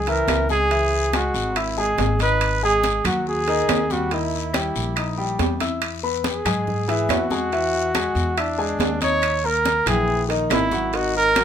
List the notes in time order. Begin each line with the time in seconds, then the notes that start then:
Already playing: C#2 G#4
0.07 E3 E4 A#4 E5, high conga, high timbale
0.28 C#2, high conga, high timbale, low timbale, short guiro, claves
0.49 G#3 G#4 G#5, high conga, short guiro
0.71 E3 E4 E5, high conga, high timbale, long guiro
0.92 high conga
1.13 G#3 F#4 G#4 G#5, high conga, high timbale, low timbale, short guiro, claves
1.34 G#1, short guiro
1.56 E4 E5 E6, high conga, high timbale, long guiro, claves
1.77 G#3 G#4 G#5, high conga
1.98 G#1, high conga, high timbale, low timbale, short guiro
2.19 D#4 B4 D#5 D#6, high conga, high timbale, short guiro
2.41 high conga, high timbale, long guiro, claves
2.62 G#3 G#4 G#5, high conga
2.84 high conga, high timbale, low timbale, short guiro
3.04 D#2 F#3 F#4 F#5, high conga, low conga, high timbale, short guiro, claves
3.27 G#4, high conga, long guiro
3.48 D#3 D#4 D#5, high conga, high timbale
3.68 D#2, high conga, high timbale, low timbale, short guiro, claves
3.90 G3 F#4 G4 G5, high conga, short guiro
4.11 D#3 E4 D#5, high conga, high timbale, long guiro
4.33 high conga
4.54 G3 G4 G5, high conga, high timbale, low timbale, short guiro, claves
4.75 A#1, short guiro
4.96 D#4 D#5 D#6, high conga, high timbale, long guiro, claves
5.18 G3 G4 G5, high conga
5.39 E2, high conga, high timbale, low timbale, short guiro
5.60 E4 E5 E6, high conga, high timbale, short guiro
5.82 high conga, high timbale, long guiro, claves
6.03 B3 B4 B5, high conga
6.24 G#4, high conga, high timbale, low timbale, short guiro
6.45 G#2 G#3 G#4 G#5, high conga, low conga, high timbale, short guiro, claves
6.67 high conga, low conga, long guiro
6.88 E3 E4 E5, high conga, high timbale
7.09 E2 F#4, high conga, high timbale, low timbale, short guiro, claves
7.30 G#3 G#4 G#5, high conga, short guiro
7.52 E3 E4 E5, high conga, high timbale, long guiro
7.74 high conga
7.95 G#3 G#4 G#5, high conga, high timbale, low timbale, short guiro, claves
8.15 E2, short guiro
8.37 D4 E4 E5 E6, high conga, high timbale, long guiro, claves
8.58 G#3 G#4 G#5, high conga
8.79 D#2, high conga, high timbale, low timbale, short guiro
9.01 D#4 C#5 D#5 D#6, high conga, high timbale, short guiro
9.22 high conga, high timbale, long guiro, claves
9.43 A#3 A#4 A#5, high conga
9.65 high conga, high timbale, low timbale, short guiro
9.86 A#1 E3 E4 G#4 G5, high conga, low conga, high timbale, short guiro, claves
10.08 high conga, long guiro
10.29 D#3 D#4 D#5, high conga, high timbale
10.50 G#1 E4, high conga, high timbale, low timbale, short guiro, claves
10.71 F#3 F#4 F#5, high conga, short guiro
10.93 D#3 D#4 F#4 D#5, high conga, high timbale, long guiro
11.15 A#4, high conga
11.35 F#3 F#4 F#5, high conga, high timbale, low timbale, short guiro, claves